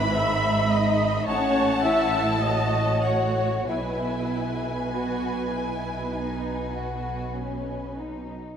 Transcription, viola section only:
Already playing: B4
0.17 E5
0.73 D#5
1.28 C#5
1.85 E5
2.44 D#5
3.06 C#5
3.69 B4

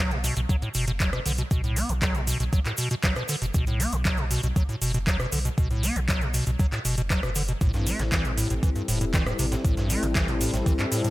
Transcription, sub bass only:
Already playing: B1
0.37 B1
0.75 F#1
1.26 B1
1.51 B1
1.89 B1
2.40 B1
3.42 F#1
3.54 B1
3.93 B1
4.43 B1
4.81 F#1
5.32 B1
5.58 B1
5.96 B1
6.47 B1
6.85 F#1
7.23 F#1
7.61 A1
7.99 A1
8.50 A1
8.88 E1
9.39 A1
9.65 A1
10.03 A1
10.54 A1

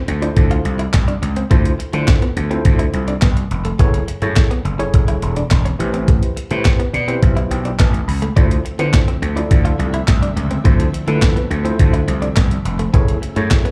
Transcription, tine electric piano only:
0.22 E4 F4 A4 C5
1.50 E4 F4 A4 C5
1.93 E4 F4 A4 C5
2.50 E4 F4 A4 C5
3.79 E4 G#4 A4 C#5
4.22 E4 G#4 A4 C#5
4.79 E4 G#4 A4 C#5
5.79 E4 G4 B4 C5
6.51 E4 G4 B4 C5
6.94 D5
7.08 E4 G4 B4 C5
7.22 E5
7.51 G5
7.79 A5
8.08 B5
8.36 E4 F4 A4 C5
8.79 E4 F4 A4 C5
9.36 E4 F4 A4 D5
10.64 E4 F4 A4 C5
11.07 E4 F4 A4 B4
11.64 E4 F4 A4 C5
12.93 E4 G#4 A4 C#5
13.36 E4 G#4 A4 C#5

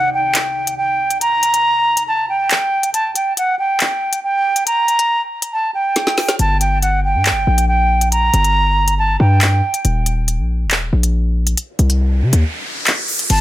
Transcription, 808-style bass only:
6.39 G1
7.15 G2
7.31 G1
7.47 A#1
8.34 G1
9.20 G2
9.85 D#1
10.39 A#1
10.66 D#1
10.93 A#1
11.79 C2
12.22 C3
12.33 D#2
13.30 G1

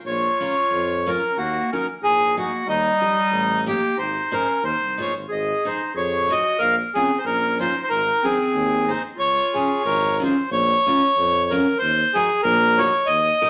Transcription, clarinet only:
0.06 F4
1.09 C#4
1.38 A#3
1.73 C#4
2.02 D#4
2.37 A#3
2.66 G3
3.68 A#3
3.97 D#4
4.34 C#4
4.63 D#4
4.99 F4
5.29 G#4
5.66 D#4
5.95 G#4
6.31 F#4
6.59 A#4
6.96 C4
7.18 D#4
7.25 C#4
7.60 D#4
7.82 D#4
7.88 D#4
8.23 C4
8.87 D#4
9.16 F4

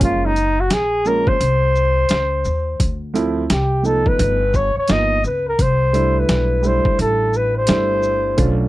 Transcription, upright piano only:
0.00 F3 G#3 A#3 C#4
1.05 F3 G#3 A#3 C#4
3.14 F3 A3 C4 E4
3.83 F3 A3 B3 D#4
4.88 F3 A#3 B3 D#4
5.93 G3 A3 D4 E4
6.62 G3 A3 D4 E4
7.67 G3 A3 D4 E4
8.37 A3 C#4 D4 F4

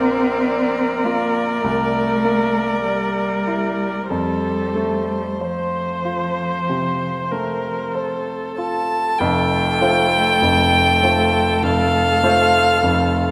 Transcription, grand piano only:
Already playing: A#1 A#3
0.47 D5
1.05 F4
1.64 C2
2.24 A#3
2.86 D5
3.47 E4
4.10 F2
4.75 A3
5.41 C5
6.05 F4
6.69 C3
7.32 A3
7.95 C5
8.58 F4
9.20 F1 F2
9.81 A3 F4 C5
10.42 F1 F2
11.03 A3 F4 C5
11.63 F1 F2
12.23 A3 F4 C5
12.83 F1 F2

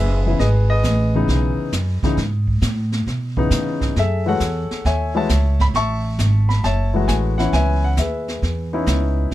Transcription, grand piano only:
Already playing: G#4 B4 D#5 E5
0.26 C#3 E3 B3 E4
0.40 G#4 B4 D#5
0.70 G#4 B4 D#5
1.15 C#3 E3 B3 D#4
2.04 C#3 E3 B3 D#4
3.37 C#3 E3 B3 D#4
3.98 G#4 A4 E5
4.26 E3 G#3 A3 F#4 A4 C#5 F#5
4.86 C#5 E5 G#5
5.15 E3 G#3 A3 F#4 C#5 E5 A5
5.61 B5
5.76 E5 A5 C#6
6.49 B5
6.64 C#5 E5 A5
6.94 E3 G#3 A3 F#4
7.08 G#5
7.38 E3 B3 C#4 E4 F#5
7.53 B4 E5 G#5
7.84 F#5
7.99 G#4 B4 E5
8.73 B3 C#4 D#4 E4

